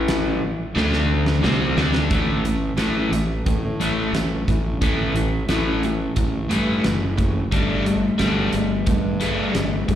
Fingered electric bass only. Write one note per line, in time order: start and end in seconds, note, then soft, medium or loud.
0.00 0.38 A1 medium
0.76 1.40 D2 medium
1.44 1.75 C2 medium
1.77 2.09 D2 medium
2.11 2.69 A1 medium
2.78 3.07 A1 medium
3.12 3.41 A1 medium
3.47 4.04 A2 medium
4.13 4.42 A1 medium
4.48 4.77 A1 medium
4.82 5.11 A1 medium
5.14 5.44 A1 medium
5.50 6.07 A1 medium
6.17 6.46 A1 medium
6.51 6.80 G2 medium
6.86 7.43 F#1 medium
7.53 8.10 G1 medium
8.20 8.49 G1 medium
8.54 8.83 G1 medium
8.87 9.45 G2 medium
9.55 9.84 G1 medium
9.89 9.95 G1 medium